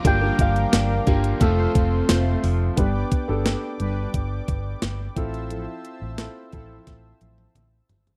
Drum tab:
HH |x-xxx-xxx-x-x-o-|x-x-x-x-x-x-x-xx|x-x-x-x-x-x-x-xx|
TB |----x-------x---|----------------|----------------|
SD |----o-------o---|----o-------o---|----o---o-------|
T1 |----------------|----------------|----------oo----|
T2 |----------------|----------------|------------o---|
FT |----------------|----------------|--------------oo|
BD |o-o---o-o-o-----|o-o-----o-o---o-|------o-o-------|